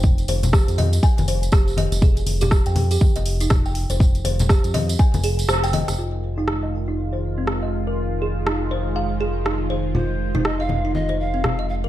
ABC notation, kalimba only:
X:1
M:4/4
L:1/16
Q:"Swing 16ths" 1/4=121
K:Fm
V:1 name="Kalimba"
z2 c z G z e z a z c z G z e z | A z2 G z g z G z e z E z g z c | z2 c z G z e z a z A z c g e z | F z2 E z e z E z c z C z e z B |
z2 A z E z c z f z A z E z c z | F z2 E z e z E z c z C z e z B |]